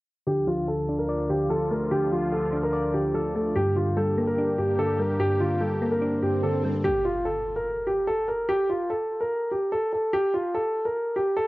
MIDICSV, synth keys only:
0, 0, Header, 1, 2, 480
1, 0, Start_track
1, 0, Key_signature, -1, "minor"
1, 0, Tempo, 410959
1, 313, Time_signature, 4, 2, 24, 8
1, 13402, End_track
2, 0, Start_track
2, 0, Title_t, "Synth keys"
2, 0, Program_c, 0, 88
2, 312, Note_on_c, 0, 50, 87
2, 533, Control_c, 0, 64, 127
2, 551, Note_on_c, 0, 53, 81
2, 1037, Note_on_c, 0, 62, 81
2, 1269, Note_on_c, 0, 74, 95
2, 1500, Note_off_c, 0, 50, 0
2, 1514, Note_on_c, 0, 50, 78
2, 1734, Note_off_c, 0, 53, 0
2, 1748, Note_on_c, 0, 53, 84
2, 1998, Note_on_c, 0, 57, 81
2, 2221, Note_off_c, 0, 50, 0
2, 2235, Note_off_c, 0, 62, 0
2, 2235, Note_on_c, 0, 50, 91
2, 2459, Note_off_c, 0, 53, 0
2, 2471, Note_off_c, 0, 74, 0
2, 2473, Note_on_c, 0, 53, 78
2, 2952, Note_on_c, 0, 62, 85
2, 3187, Note_on_c, 0, 74, 101
2, 3196, Note_off_c, 0, 57, 0
2, 3420, Note_off_c, 0, 50, 0
2, 3434, Note_on_c, 0, 50, 77
2, 3661, Note_off_c, 0, 53, 0
2, 3675, Note_on_c, 0, 53, 82
2, 3921, Note_on_c, 0, 57, 72
2, 4150, Note_off_c, 0, 74, 0
2, 4153, Note_off_c, 0, 62, 0
2, 4153, Note_on_c, 0, 43, 91
2, 4154, Note_off_c, 0, 50, 0
2, 4154, Note_off_c, 0, 53, 0
2, 4157, Note_off_c, 0, 57, 0
2, 4171, Control_c, 0, 64, 0
2, 4369, Control_c, 0, 64, 127
2, 4398, Note_on_c, 0, 50, 77
2, 4638, Note_on_c, 0, 55, 89
2, 4879, Note_on_c, 0, 58, 84
2, 5118, Note_on_c, 0, 62, 94
2, 5341, Note_off_c, 0, 43, 0
2, 5355, Note_on_c, 0, 43, 80
2, 5576, Note_off_c, 0, 50, 0
2, 5591, Note_on_c, 0, 50, 77
2, 5815, Note_off_c, 0, 55, 0
2, 5829, Note_on_c, 0, 55, 86
2, 6056, Note_off_c, 0, 43, 0
2, 6070, Note_on_c, 0, 43, 89
2, 6077, Note_off_c, 0, 58, 0
2, 6306, Note_off_c, 0, 50, 0
2, 6316, Note_off_c, 0, 62, 0
2, 6320, Note_on_c, 0, 50, 78
2, 6541, Note_off_c, 0, 55, 0
2, 6555, Note_on_c, 0, 55, 81
2, 6796, Note_on_c, 0, 58, 90
2, 7029, Note_on_c, 0, 62, 97
2, 7262, Note_off_c, 0, 43, 0
2, 7276, Note_on_c, 0, 43, 75
2, 7504, Note_off_c, 0, 50, 0
2, 7518, Note_on_c, 0, 50, 82
2, 7747, Note_off_c, 0, 55, 0
2, 7761, Note_on_c, 0, 55, 79
2, 7991, Note_off_c, 0, 62, 0
2, 7995, Note_off_c, 0, 43, 0
2, 7995, Note_off_c, 0, 58, 0
2, 7996, Note_off_c, 0, 50, 0
2, 7997, Note_off_c, 0, 55, 0
2, 8009, Control_c, 0, 64, 0
2, 8209, Control_c, 0, 64, 127
2, 11848, Control_c, 0, 64, 0
2, 13402, End_track
0, 0, End_of_file